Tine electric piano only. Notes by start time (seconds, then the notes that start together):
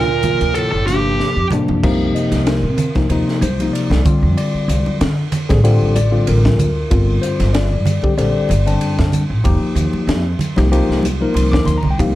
0.24 C3 F3 A#3 F4
0.89 C3 F3 A#3 D4
1.53 C3 F3 A#3 D4
1.83 C3 F3 A#3 D#4
2.15 D#5
2.47 A#4
2.95 C3 F3 A#3 D#4
3.10 C3 F3 A#3 D#4
3.43 C5
3.60 C3 F3 A#3 D#4
3.73 D5
4.06 D3 G3 C4 F4
4.37 D5
5.49 D3 G3 C4 G#4
5.63 D3 G3 C4 F4
5.95 D5
6.12 D3 G3 C4 F4
6.28 A#4
6.90 D3 G3 C4 F4
7.22 C5
7.53 D5
8.03 D3 G3 C4 G4
8.18 D3 G3 C4 G4 D5
8.67 D3 G3 C4 D4
9.44 F3 A#3 D#4 G4
10.57 F3 A#3 D#4 G4
10.71 F3 A#3 D#4 G4
11.21 F3 A#3 D#4 A#4
11.36 C6
11.52 D6
11.66 C6
11.78 A#5
11.90 G5
11.99 F3 A#3 D#4 G4 F5